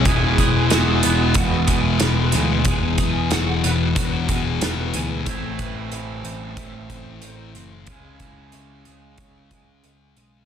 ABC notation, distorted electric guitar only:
X:1
M:4/4
L:1/8
Q:1/4=92
K:E
V:1 name="Distorted electric guitar" clef=bass
[E,,B,,E,]2 [E,,B,,E,]2 [E,,B,,E,] [B,,E,]2 [B,,E,] | [E,,B,,E,]2 [E,,B,,E,]2 [E,,B,,E,] [B,,E,]2 [B,,E,] | [A,,E,A,]2 [A,,E,A,]2 [A,,E,A,] [E,A,]2 [E,A,] | [C,G,C]2 [C,G,C]2 [C,G,C] [G,C]2 [G,C] |]